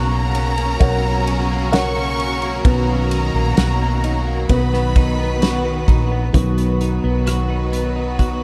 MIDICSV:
0, 0, Header, 1, 7, 480
1, 0, Start_track
1, 0, Key_signature, 5, "major"
1, 0, Tempo, 923077
1, 1380, Time_signature, 4, 2, 24, 8
1, 4386, End_track
2, 0, Start_track
2, 0, Title_t, "Violin section"
2, 0, Program_c, 0, 48
2, 0, Note_on_c, 0, 82, 113
2, 897, Note_off_c, 0, 82, 0
2, 902, Note_on_c, 0, 85, 115
2, 1360, Note_off_c, 0, 85, 0
2, 1377, Note_on_c, 0, 82, 100
2, 2318, Note_off_c, 0, 82, 0
2, 2338, Note_on_c, 0, 83, 83
2, 3038, Note_off_c, 0, 83, 0
2, 4386, End_track
3, 0, Start_track
3, 0, Title_t, "Upright piano"
3, 0, Program_c, 1, 0
3, 0, Control_c, 1, 64, 127
3, 0, Note_on_c, 1, 59, 69
3, 414, Note_on_c, 1, 70, 51
3, 416, Note_on_c, 1, 73, 41
3, 419, Note_on_c, 1, 78, 50
3, 882, Note_off_c, 1, 70, 0
3, 884, Note_off_c, 1, 73, 0
3, 885, Note_off_c, 1, 78, 0
3, 894, Note_on_c, 1, 70, 57
3, 897, Note_on_c, 1, 73, 54
3, 900, Note_on_c, 1, 78, 58
3, 1356, Note_off_c, 1, 59, 0
3, 1363, Note_off_c, 1, 70, 0
3, 1364, Note_off_c, 1, 73, 0
3, 1365, Note_off_c, 1, 78, 0
3, 1378, Note_on_c, 1, 59, 66
3, 1387, Control_c, 1, 64, 0
3, 1482, Control_c, 1, 64, 127
3, 2318, Note_off_c, 1, 59, 0
3, 2338, Note_on_c, 1, 59, 64
3, 2347, Control_c, 1, 64, 0
3, 2440, Control_c, 1, 64, 127
3, 3278, Note_off_c, 1, 59, 0
3, 3293, Note_on_c, 1, 51, 44
3, 3297, Note_on_c, 1, 54, 41
3, 3300, Note_on_c, 1, 59, 54
3, 3306, Control_c, 1, 64, 0
3, 3413, Control_c, 1, 64, 127
3, 3995, Note_off_c, 1, 51, 0
3, 3997, Note_off_c, 1, 54, 0
3, 3999, Note_off_c, 1, 59, 0
3, 4386, End_track
4, 0, Start_track
4, 0, Title_t, "Clean electric guitar"
4, 0, Program_c, 2, 27
4, 0, Note_on_c, 2, 47, 85
4, 0, Note_on_c, 2, 58, 68
4, 0, Note_on_c, 2, 61, 59
4, 0, Note_on_c, 2, 66, 69
4, 59, Note_off_c, 2, 58, 0
4, 61, Note_on_c, 2, 58, 59
4, 177, Note_off_c, 2, 61, 0
4, 183, Note_on_c, 2, 61, 61
4, 298, Note_off_c, 2, 58, 0
4, 300, Note_on_c, 2, 58, 55
4, 413, Note_off_c, 2, 47, 0
4, 419, Note_on_c, 2, 47, 87
4, 537, Note_off_c, 2, 58, 0
4, 539, Note_on_c, 2, 58, 52
4, 653, Note_off_c, 2, 61, 0
4, 659, Note_on_c, 2, 61, 61
4, 779, Note_off_c, 2, 58, 0
4, 781, Note_on_c, 2, 58, 62
4, 896, Note_off_c, 2, 66, 0
4, 898, Note_on_c, 2, 66, 67
4, 1019, Note_off_c, 2, 58, 0
4, 1021, Note_on_c, 2, 58, 51
4, 1134, Note_off_c, 2, 61, 0
4, 1140, Note_on_c, 2, 61, 58
4, 1259, Note_off_c, 2, 58, 0
4, 1262, Note_on_c, 2, 58, 53
4, 1377, Note_off_c, 2, 47, 0
4, 1383, Note_on_c, 2, 47, 78
4, 1428, Note_off_c, 2, 61, 0
4, 1429, Note_off_c, 2, 58, 0
4, 1503, Note_on_c, 2, 58, 51
4, 1625, Note_on_c, 2, 63, 60
4, 1738, Note_off_c, 2, 58, 0
4, 1744, Note_on_c, 2, 58, 61
4, 1860, Note_off_c, 2, 66, 0
4, 1862, Note_on_c, 2, 66, 62
4, 1977, Note_off_c, 2, 58, 0
4, 1983, Note_on_c, 2, 58, 62
4, 2100, Note_off_c, 2, 63, 0
4, 2102, Note_on_c, 2, 63, 62
4, 2214, Note_off_c, 2, 58, 0
4, 2220, Note_on_c, 2, 58, 59
4, 2341, Note_off_c, 2, 47, 0
4, 2388, Note_off_c, 2, 58, 0
4, 2462, Note_on_c, 2, 59, 55
4, 2580, Note_off_c, 2, 63, 0
4, 2582, Note_on_c, 2, 63, 61
4, 2698, Note_off_c, 2, 59, 0
4, 2700, Note_on_c, 2, 59, 57
4, 2816, Note_off_c, 2, 66, 0
4, 2819, Note_on_c, 2, 66, 53
4, 2937, Note_off_c, 2, 59, 0
4, 2939, Note_on_c, 2, 59, 48
4, 3056, Note_off_c, 2, 63, 0
4, 3058, Note_on_c, 2, 63, 49
4, 3178, Note_off_c, 2, 59, 0
4, 3180, Note_on_c, 2, 59, 52
4, 3298, Note_on_c, 2, 47, 65
4, 3300, Note_off_c, 2, 66, 0
4, 3302, Note_on_c, 2, 66, 55
4, 3417, Note_off_c, 2, 59, 0
4, 3419, Note_on_c, 2, 59, 47
4, 3539, Note_off_c, 2, 63, 0
4, 3541, Note_on_c, 2, 63, 49
4, 3658, Note_off_c, 2, 59, 0
4, 3661, Note_on_c, 2, 59, 56
4, 3774, Note_off_c, 2, 66, 0
4, 3776, Note_on_c, 2, 66, 59
4, 3893, Note_off_c, 2, 63, 0
4, 3899, Note_on_c, 2, 63, 48
4, 4015, Note_off_c, 2, 59, 0
4, 4017, Note_on_c, 2, 59, 50
4, 4132, Note_off_c, 2, 63, 0
4, 4139, Note_on_c, 2, 63, 48
4, 4256, Note_off_c, 2, 66, 0
4, 4259, Note_off_c, 2, 47, 0
4, 4259, Note_on_c, 2, 66, 55
4, 4377, Note_off_c, 2, 59, 0
4, 4386, Note_off_c, 2, 63, 0
4, 4386, Note_off_c, 2, 66, 0
4, 4386, End_track
5, 0, Start_track
5, 0, Title_t, "String section"
5, 0, Program_c, 3, 48
5, 0, Note_on_c, 3, 49, 73
5, 0, Note_on_c, 3, 54, 64
5, 0, Note_on_c, 3, 61, 66
5, 0, Note_on_c, 3, 66, 68
5, 0, Note_on_c, 3, 70, 77
5, 1357, Note_off_c, 3, 49, 0
5, 1383, Note_on_c, 3, 51, 70
5, 2319, Note_off_c, 3, 70, 0
5, 2320, Note_off_c, 3, 61, 0
5, 2332, Note_off_c, 3, 51, 0
5, 2341, Note_on_c, 3, 51, 80
5, 2343, Note_on_c, 3, 59, 71
5, 2343, Note_on_c, 3, 71, 89
5, 3279, Note_off_c, 3, 54, 0
5, 3280, Note_off_c, 3, 66, 0
5, 3291, Note_off_c, 3, 51, 0
5, 3291, Note_off_c, 3, 59, 0
5, 3291, Note_off_c, 3, 71, 0
5, 3296, Note_on_c, 3, 66, 54
5, 3297, Note_on_c, 3, 51, 59
5, 3297, Note_on_c, 3, 59, 57
5, 3297, Note_on_c, 3, 71, 73
5, 3298, Note_on_c, 3, 54, 56
5, 4386, Note_off_c, 3, 51, 0
5, 4386, Note_off_c, 3, 54, 0
5, 4386, Note_off_c, 3, 59, 0
5, 4386, Note_off_c, 3, 66, 0
5, 4386, Note_off_c, 3, 71, 0
5, 4386, End_track
6, 0, Start_track
6, 0, Title_t, "Fretless electric bass"
6, 0, Program_c, 4, 35
6, 0, Note_on_c, 4, 35, 98
6, 398, Note_off_c, 4, 35, 0
6, 420, Note_on_c, 4, 35, 103
6, 1359, Note_off_c, 4, 35, 0
6, 1379, Note_on_c, 4, 35, 105
6, 1718, Note_off_c, 4, 35, 0
6, 1737, Note_on_c, 4, 34, 85
6, 1850, Note_off_c, 4, 34, 0
6, 1859, Note_on_c, 4, 35, 84
6, 2319, Note_off_c, 4, 35, 0
6, 2337, Note_on_c, 4, 35, 106
6, 3037, Note_off_c, 4, 35, 0
6, 3060, Note_on_c, 4, 34, 99
6, 3283, Note_off_c, 4, 34, 0
6, 3298, Note_on_c, 4, 35, 89
6, 3638, Note_off_c, 4, 35, 0
6, 3660, Note_on_c, 4, 35, 83
6, 4386, Note_off_c, 4, 35, 0
6, 4386, End_track
7, 0, Start_track
7, 0, Title_t, "Drums"
7, 180, Note_on_c, 9, 51, 67
7, 232, Note_off_c, 9, 51, 0
7, 299, Note_on_c, 9, 51, 52
7, 351, Note_off_c, 9, 51, 0
7, 419, Note_on_c, 9, 36, 92
7, 419, Note_on_c, 9, 51, 63
7, 471, Note_off_c, 9, 36, 0
7, 471, Note_off_c, 9, 51, 0
7, 662, Note_on_c, 9, 51, 56
7, 714, Note_off_c, 9, 51, 0
7, 899, Note_on_c, 9, 51, 61
7, 904, Note_on_c, 9, 38, 91
7, 951, Note_off_c, 9, 51, 0
7, 956, Note_off_c, 9, 38, 0
7, 1142, Note_on_c, 9, 51, 50
7, 1194, Note_off_c, 9, 51, 0
7, 1257, Note_on_c, 9, 51, 39
7, 1309, Note_off_c, 9, 51, 0
7, 1378, Note_on_c, 9, 36, 111
7, 1379, Note_on_c, 9, 51, 69
7, 1430, Note_off_c, 9, 36, 0
7, 1431, Note_off_c, 9, 51, 0
7, 1618, Note_on_c, 9, 51, 65
7, 1670, Note_off_c, 9, 51, 0
7, 1856, Note_on_c, 9, 51, 66
7, 1860, Note_on_c, 9, 38, 116
7, 1908, Note_off_c, 9, 51, 0
7, 1912, Note_off_c, 9, 38, 0
7, 2099, Note_on_c, 9, 51, 63
7, 2151, Note_off_c, 9, 51, 0
7, 2336, Note_on_c, 9, 51, 66
7, 2338, Note_on_c, 9, 36, 85
7, 2388, Note_off_c, 9, 51, 0
7, 2390, Note_off_c, 9, 36, 0
7, 2462, Note_on_c, 9, 38, 31
7, 2514, Note_off_c, 9, 38, 0
7, 2578, Note_on_c, 9, 36, 100
7, 2578, Note_on_c, 9, 51, 55
7, 2630, Note_off_c, 9, 36, 0
7, 2630, Note_off_c, 9, 51, 0
7, 2818, Note_on_c, 9, 51, 62
7, 2823, Note_on_c, 9, 38, 95
7, 2870, Note_off_c, 9, 51, 0
7, 2875, Note_off_c, 9, 38, 0
7, 3058, Note_on_c, 9, 36, 85
7, 3061, Note_on_c, 9, 51, 53
7, 3110, Note_off_c, 9, 36, 0
7, 3113, Note_off_c, 9, 51, 0
7, 3298, Note_on_c, 9, 36, 99
7, 3299, Note_on_c, 9, 42, 84
7, 3350, Note_off_c, 9, 36, 0
7, 3351, Note_off_c, 9, 42, 0
7, 3420, Note_on_c, 9, 42, 45
7, 3472, Note_off_c, 9, 42, 0
7, 3540, Note_on_c, 9, 42, 67
7, 3592, Note_off_c, 9, 42, 0
7, 3780, Note_on_c, 9, 42, 68
7, 3783, Note_on_c, 9, 37, 89
7, 3832, Note_off_c, 9, 42, 0
7, 3835, Note_off_c, 9, 37, 0
7, 4020, Note_on_c, 9, 42, 70
7, 4072, Note_off_c, 9, 42, 0
7, 4259, Note_on_c, 9, 42, 58
7, 4260, Note_on_c, 9, 36, 76
7, 4311, Note_off_c, 9, 42, 0
7, 4312, Note_off_c, 9, 36, 0
7, 4386, End_track
0, 0, End_of_file